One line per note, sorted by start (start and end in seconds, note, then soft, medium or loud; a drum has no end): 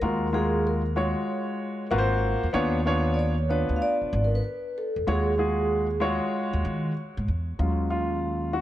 0.00 1.13 D#2 loud
0.00 0.26 G#3 medium
0.00 0.26 F4 medium
0.00 0.27 F#4 medium
0.00 0.30 A#4 medium
0.00 0.27 A#4 medium
0.33 0.80 G#3 medium
0.33 0.80 F4 medium
0.33 0.81 F#4 medium
0.33 0.66 G#4 medium
0.33 0.81 A#4 medium
0.67 0.81 A#4 medium
0.96 1.86 G#3 medium
0.96 1.86 F4 medium
0.96 1.86 F#4 medium
0.96 1.86 C#5 medium
0.96 1.56 C#5 medium
1.91 2.33 G#1 medium
1.91 2.45 A#3 medium
1.91 2.45 F4 medium
1.91 2.45 F#4 medium
1.91 2.00 B4 medium
1.98 2.49 C5 loud
2.43 2.52 E2 medium
2.53 3.65 D#2 loud
2.53 2.78 B3 medium
2.53 2.79 D4 medium
2.53 2.79 F4 medium
2.53 2.79 C#5 loud
2.86 3.33 B3 medium
2.86 3.33 D4 medium
2.86 3.33 F4 medium
2.86 3.34 C#5 loud
3.14 3.18 D5 medium
3.19 3.49 C#5 medium
3.49 4.39 B3 medium
3.49 4.39 D4 medium
3.49 4.39 F4 medium
3.49 4.39 B4 medium
3.49 3.75 C#5 medium
3.69 3.78 D2 medium
3.76 3.81 F5 medium
3.82 4.25 D5 loud
4.01 muted upright bass stroke soft
4.13 4.38 G#1 medium
4.24 4.33 A#4 medium
4.35 4.78 B4 medium
4.78 5.09 A4 medium
4.96 5.05 E2 medium
5.07 6.18 D#2 loud
5.07 5.32 G#3 medium
5.07 5.32 F4 medium
5.07 5.32 F#4 medium
5.07 5.99 G#4 medium
5.07 5.32 C#5 medium
5.38 5.85 G#3 medium
5.38 5.86 F4 medium
5.38 5.86 F#4 medium
5.38 5.86 G#4 medium
6.00 6.90 G#3 medium
6.00 6.91 F4 medium
6.00 6.91 F#4 medium
6.00 6.91 C#5 medium
6.53 6.62 D#2 medium
6.65 6.90 D#3 medium
7.17 7.26 G#2 medium
7.28 7.53 E2 medium
7.59 8.61 D#2 medium
7.59 8.61 F#3 medium
7.59 8.61 G#3 soft
7.59 8.61 C#4 soft
7.59 7.89 F4 medium
7.90 8.56 F4 medium
8.53 8.61 F#4 medium